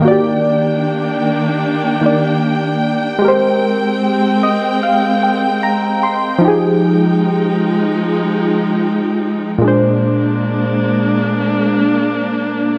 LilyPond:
<<
  \new Staff \with { instrumentName = "Synth keys" } { \time 4/4 \key ees \major \tempo 4 = 75 << { r1 | r4. ees''8 f''8 g''8 bes''8 c'''8 | r1 | r1 | } \\ { <ees bes ges' g' d''>2~ <ees bes ges' g' d''>8 <ees bes g' d''>4. | <aes g' bes' c''>1 | <f ees' g' aes'>1 | <bes, aes d' c''>1 | } >> }
  \new Staff \with { instrumentName = "String section" } { \time 4/4 \key ees \major << { g''1~ | g''1 | aes1 | d'1 | } \\ { <ees bes d'>1 | <aes c'>1 | <f ees'>1 | <aes bes>1 | } >> }
>>